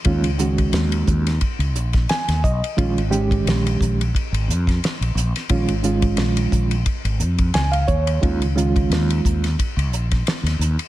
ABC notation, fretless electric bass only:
X:1
M:4/4
L:1/16
Q:"Swing 16ths" 1/4=88
K:Bbm
V:1 name="Fretless electric bass" clef=bass
E,, D,,3 E,,2 E,,2 z D,, B,,,2 z E,, _C,, z | B,,, A,,,3 B,,,2 B,,,2 z A,,, F,,2 z B,,, B,,, z | B,,, A,,,3 B,,,2 B,,,2 z A,,, F,,2 D,,2 E,,2 | E,, D,,3 E,,2 E,,2 z D,, B,,,2 z E,, E,, z |]